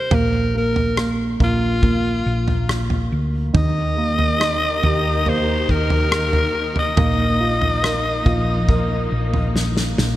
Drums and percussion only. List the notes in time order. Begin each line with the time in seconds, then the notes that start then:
0.11 floor tom
0.76 floor tom
0.97 cross-stick
1.40 kick, floor tom
1.83 kick, floor tom
2.48 floor tom
2.69 cross-stick
2.90 floor tom
3.55 kick, floor tom
4.19 floor tom
4.41 cross-stick
4.83 floor tom
5.26 floor tom
5.69 kick
5.90 floor tom
6.12 cross-stick
6.33 floor tom
6.76 floor tom
6.97 floor tom
7.62 floor tom
7.84 cross-stick
8.26 kick, floor tom
8.69 kick, floor tom
9.34 floor tom
9.56 snare
9.77 snare
9.98 snare